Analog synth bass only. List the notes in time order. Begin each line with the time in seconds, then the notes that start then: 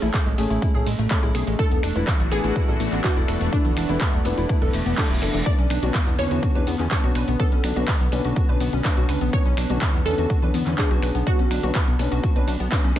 0.02 A1
0.26 A1
0.38 A1
0.51 A1
0.75 A1
0.86 A1
0.99 A1
1.23 A1
1.35 B1
1.47 A1
1.71 E1
1.83 E1
1.96 E1
2.20 A1
2.32 A1
2.44 A1
2.68 A1
2.80 A1
2.92 A1
3.17 E1
3.28 E1
3.41 E1
3.65 E1
3.77 E1
3.89 E1
4.14 E1
4.25 E1
4.38 E1
4.62 E1
4.74 E1
4.86 E1
5.10 E1
5.22 F#1
5.34 E1
5.59 B1
5.70 B1
5.83 B1
6.07 E2
6.19 E2
6.31 E2
6.55 E2
6.67 E2
6.79 E2
7.04 B1
7.16 B1
7.28 B1
7.52 B1
7.64 B1
7.76 B1
8.01 B1
8.12 B1
8.25 B1
8.49 B1
8.61 B1
8.73 B1
8.97 B1
9.09 C#2
9.21 B1
9.46 B1
9.57 B1
9.70 B1
9.94 E2
10.06 E2
10.18 E2
10.42 E2
10.54 E2
10.67 E2
10.91 B1
11.03 B1
11.15 B1
11.39 B1
11.51 B1
11.63 B1
11.88 B1
11.99 B1
12.12 B1
12.36 B1
12.48 B1
12.60 B1
12.84 B1